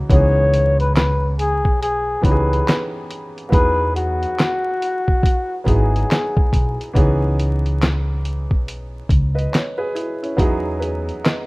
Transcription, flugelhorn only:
0, 0, Header, 1, 2, 480
1, 0, Start_track
1, 0, Key_signature, 4, "minor"
1, 0, Tempo, 857143
1, 53, Time_signature, 4, 2, 24, 8
1, 6420, End_track
2, 0, Start_track
2, 0, Title_t, "Flugelhorn"
2, 0, Program_c, 0, 56
2, 59, Note_on_c, 0, 73, 93
2, 427, Note_off_c, 0, 73, 0
2, 451, Note_on_c, 0, 71, 82
2, 527, Note_off_c, 0, 71, 0
2, 536, Note_on_c, 0, 71, 73
2, 752, Note_off_c, 0, 71, 0
2, 779, Note_on_c, 0, 68, 87
2, 993, Note_off_c, 0, 68, 0
2, 1018, Note_on_c, 0, 68, 84
2, 1233, Note_off_c, 0, 68, 0
2, 1256, Note_on_c, 0, 71, 76
2, 1625, Note_off_c, 0, 71, 0
2, 1979, Note_on_c, 0, 71, 89
2, 2194, Note_off_c, 0, 71, 0
2, 2218, Note_on_c, 0, 66, 84
2, 3153, Note_off_c, 0, 66, 0
2, 3180, Note_on_c, 0, 68, 73
2, 3874, Note_off_c, 0, 68, 0
2, 6420, End_track
0, 0, End_of_file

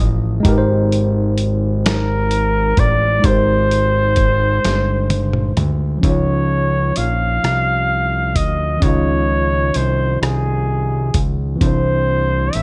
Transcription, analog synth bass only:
0, 0, Header, 1, 2, 480
1, 0, Start_track
1, 0, Tempo, 930233
1, 232, Time_signature, 6, 3, 24, 8
1, 6514, End_track
2, 0, Start_track
2, 0, Title_t, "Analog synth bass"
2, 0, Program_c, 0, 38
2, 0, Note_on_c, 0, 33, 94
2, 212, Note_off_c, 0, 33, 0
2, 236, Note_on_c, 0, 32, 112
2, 1413, Note_off_c, 0, 32, 0
2, 1435, Note_on_c, 0, 33, 90
2, 1652, Note_off_c, 0, 33, 0
2, 1675, Note_on_c, 0, 32, 113
2, 2373, Note_off_c, 0, 32, 0
2, 2398, Note_on_c, 0, 31, 94
2, 2854, Note_off_c, 0, 31, 0
2, 2880, Note_on_c, 0, 38, 83
2, 3095, Note_off_c, 0, 38, 0
2, 3116, Note_on_c, 0, 37, 109
2, 3573, Note_off_c, 0, 37, 0
2, 3600, Note_on_c, 0, 34, 86
2, 3815, Note_off_c, 0, 34, 0
2, 3838, Note_on_c, 0, 36, 86
2, 4315, Note_on_c, 0, 38, 84
2, 4322, Note_off_c, 0, 36, 0
2, 4532, Note_off_c, 0, 38, 0
2, 4555, Note_on_c, 0, 37, 111
2, 5012, Note_off_c, 0, 37, 0
2, 5035, Note_on_c, 0, 36, 98
2, 5253, Note_off_c, 0, 36, 0
2, 5274, Note_on_c, 0, 36, 95
2, 5732, Note_off_c, 0, 36, 0
2, 5754, Note_on_c, 0, 37, 79
2, 5972, Note_off_c, 0, 37, 0
2, 5994, Note_on_c, 0, 36, 108
2, 6452, Note_off_c, 0, 36, 0
2, 6478, Note_on_c, 0, 33, 89
2, 6514, Note_off_c, 0, 33, 0
2, 6514, End_track
0, 0, End_of_file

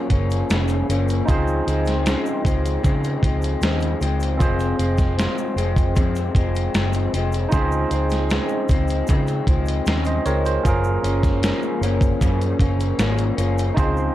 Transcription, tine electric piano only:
0, 0, Header, 1, 2, 480
1, 0, Start_track
1, 0, Tempo, 780234
1, 789, Time_signature, 4, 2, 24, 8
1, 8704, End_track
2, 0, Start_track
2, 0, Title_t, "Tine electric piano"
2, 0, Program_c, 0, 4
2, 0, Control_c, 0, 64, 127
2, 0, Note_on_c, 0, 61, 78
2, 0, Note_on_c, 0, 65, 70
2, 0, Note_on_c, 0, 68, 75
2, 0, Note_on_c, 0, 70, 83
2, 754, Note_off_c, 0, 61, 0
2, 760, Note_off_c, 0, 65, 0
2, 764, Note_off_c, 0, 68, 0
2, 768, Note_off_c, 0, 70, 0
2, 772, Note_on_c, 0, 63, 81
2, 783, Note_on_c, 0, 65, 74
2, 794, Note_on_c, 0, 68, 72
2, 797, Control_c, 0, 64, 0
2, 805, Note_on_c, 0, 72, 89
2, 920, Control_c, 0, 64, 127
2, 2676, Note_off_c, 0, 63, 0
2, 2682, Note_off_c, 0, 65, 0
2, 2687, Note_off_c, 0, 68, 0
2, 2692, Note_on_c, 0, 60, 80
2, 2693, Note_off_c, 0, 72, 0
2, 2702, Note_on_c, 0, 65, 74
2, 2711, Note_on_c, 0, 68, 72
2, 2718, Control_c, 0, 64, 0
2, 2721, Note_on_c, 0, 72, 91
2, 2819, Control_c, 0, 64, 127
2, 4597, Note_off_c, 0, 60, 0
2, 4602, Note_off_c, 0, 65, 0
2, 4605, Note_on_c, 0, 63, 79
2, 4607, Note_off_c, 0, 68, 0
2, 4612, Note_off_c, 0, 72, 0
2, 4616, Note_on_c, 0, 65, 68
2, 4629, Note_on_c, 0, 68, 74
2, 4636, Note_on_c, 0, 72, 87
2, 4639, Control_c, 0, 64, 0
2, 4761, Control_c, 0, 64, 127
2, 6046, Note_off_c, 0, 68, 0
2, 6050, Note_off_c, 0, 72, 0
2, 6192, Note_on_c, 0, 75, 61
2, 6195, Note_on_c, 0, 72, 54
2, 6306, Note_off_c, 0, 75, 0
2, 6308, Note_off_c, 0, 72, 0
2, 6309, Note_on_c, 0, 73, 71
2, 6313, Note_on_c, 0, 70, 62
2, 6424, Note_off_c, 0, 73, 0
2, 6427, Note_off_c, 0, 70, 0
2, 6433, Note_on_c, 0, 72, 68
2, 6438, Note_on_c, 0, 68, 56
2, 6514, Note_off_c, 0, 63, 0
2, 6520, Note_off_c, 0, 65, 0
2, 6541, Note_on_c, 0, 61, 77
2, 6552, Note_on_c, 0, 65, 75
2, 6556, Note_off_c, 0, 68, 0
2, 6560, Control_c, 0, 64, 0
2, 6563, Note_on_c, 0, 68, 69
2, 6572, Note_on_c, 0, 70, 87
2, 6661, Note_off_c, 0, 72, 0
2, 6671, Control_c, 0, 64, 127
2, 8443, Note_off_c, 0, 61, 0
2, 8448, Note_off_c, 0, 65, 0
2, 8454, Note_off_c, 0, 68, 0
2, 8455, Note_on_c, 0, 63, 75
2, 8458, Note_off_c, 0, 70, 0
2, 8467, Note_on_c, 0, 65, 78
2, 8476, Note_on_c, 0, 68, 76
2, 8479, Control_c, 0, 64, 0
2, 8486, Note_on_c, 0, 72, 83
2, 8572, Control_c, 0, 64, 127
2, 8704, Note_off_c, 0, 63, 0
2, 8704, Note_off_c, 0, 65, 0
2, 8704, Note_off_c, 0, 68, 0
2, 8704, Note_off_c, 0, 72, 0
2, 8704, End_track
0, 0, End_of_file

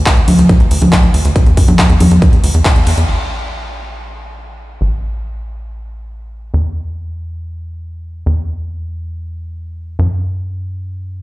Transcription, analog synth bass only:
0, 0, Header, 1, 2, 480
1, 0, Start_track
1, 0, Tempo, 431655
1, 1509, Time_signature, 4, 2, 24, 8
1, 12479, End_track
2, 0, Start_track
2, 0, Title_t, "Analog synth bass"
2, 0, Program_c, 0, 38
2, 189, Note_on_c, 0, 38, 88
2, 272, Note_off_c, 0, 38, 0
2, 309, Note_on_c, 0, 38, 102
2, 392, Note_off_c, 0, 38, 0
2, 429, Note_on_c, 0, 38, 90
2, 512, Note_off_c, 0, 38, 0
2, 669, Note_on_c, 0, 38, 82
2, 752, Note_off_c, 0, 38, 0
2, 789, Note_on_c, 0, 38, 99
2, 872, Note_off_c, 0, 38, 0
2, 909, Note_on_c, 0, 38, 94
2, 992, Note_off_c, 0, 38, 0
2, 1149, Note_on_c, 0, 38, 89
2, 1232, Note_off_c, 0, 38, 0
2, 1269, Note_on_c, 0, 38, 97
2, 1352, Note_off_c, 0, 38, 0
2, 1389, Note_on_c, 0, 38, 92
2, 1472, Note_off_c, 0, 38, 0
2, 1630, Note_on_c, 0, 40, 86
2, 1712, Note_off_c, 0, 40, 0
2, 1749, Note_on_c, 0, 42, 97
2, 1832, Note_off_c, 0, 42, 0
2, 1869, Note_on_c, 0, 40, 93
2, 1952, Note_off_c, 0, 40, 0
2, 2109, Note_on_c, 0, 40, 86
2, 2192, Note_off_c, 0, 40, 0
2, 2229, Note_on_c, 0, 40, 98
2, 2312, Note_off_c, 0, 40, 0
2, 2349, Note_on_c, 0, 40, 95
2, 2432, Note_off_c, 0, 40, 0
2, 2590, Note_on_c, 0, 40, 83
2, 2672, Note_off_c, 0, 40, 0
2, 2709, Note_on_c, 0, 38, 99
2, 2792, Note_off_c, 0, 38, 0
2, 2829, Note_on_c, 0, 40, 93
2, 2912, Note_off_c, 0, 40, 0
2, 3068, Note_on_c, 0, 40, 84
2, 3152, Note_off_c, 0, 40, 0
2, 3189, Note_on_c, 0, 40, 99
2, 3272, Note_off_c, 0, 40, 0
2, 3308, Note_on_c, 0, 40, 90
2, 3391, Note_off_c, 0, 40, 0
2, 3429, Note_on_c, 0, 33, 87
2, 5325, Note_off_c, 0, 33, 0
2, 5349, Note_on_c, 0, 33, 91
2, 7245, Note_off_c, 0, 33, 0
2, 7269, Note_on_c, 0, 40, 90
2, 9165, Note_off_c, 0, 40, 0
2, 9189, Note_on_c, 0, 40, 87
2, 11085, Note_off_c, 0, 40, 0
2, 11109, Note_on_c, 0, 42, 89
2, 12479, Note_off_c, 0, 42, 0
2, 12479, End_track
0, 0, End_of_file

